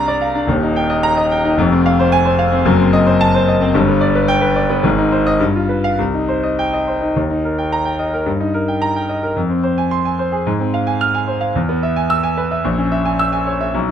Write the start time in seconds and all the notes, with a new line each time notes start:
Already playing: C2 D4 D5 F5 A#5
0.08 D5
0.21 F5
0.35 D4
0.47 D#1 D#2
0.63 D#4
0.76 G5
0.90 D#5
1.03 A#5
1.17 D#5
1.31 G5
1.45 D#4
1.57 F1 F2
1.72 C4
1.86 F5
2.00 C5
2.12 G#5
2.25 C5
2.39 F5
2.52 C4
2.65 F#1 F#2
2.80 C4
2.93 D#5
3.07 C5
3.21 A5
3.35 C5
3.48 D#5
3.61 C4
3.74 G1 G2
3.88 B3
4.01 D5
4.15 B4
4.28 G5
4.41 B4
4.56 D5
4.70 B3
4.83 G#1 G#2
4.98 D#4
5.12 C5
5.26 D#5
5.40 G2
5.55 F4
5.69 B4
5.84 F5
5.98 C2
6.14 D#4
6.28 C5
6.43 D#5
6.59 G5
6.73 D#5
6.88 C5
7.02 D#4
7.16 D#2
7.30 D#4
7.45 A#4
7.58 G5
7.72 A#5
7.85 G5
7.99 D#5
8.14 A#4
8.26 G2
8.40 D#4
8.54 A#4
8.68 G5
8.82 A#5
8.96 G5
9.09 D#5
9.23 A#4
9.36 F2
9.49 C4
9.63 C5
9.78 G#5
9.91 C6
10.05 G#5
10.19 C5
10.32 G#4
10.47 G#2
10.60 C4
10.74 F5
10.87 G#5
11.01 F6
11.14 G#5
11.28 C5
11.41 F5
11.55 E2
11.69 B3
11.83 E5
11.96 G#5
12.10 E6
12.23 G#5
12.37 B4
12.51 E5
12.64 A#1
12.78 C#4
12.92 E5
13.05 G#5
13.19 E6
13.33 G#5
13.47 C#5
13.61 E5
13.74 B1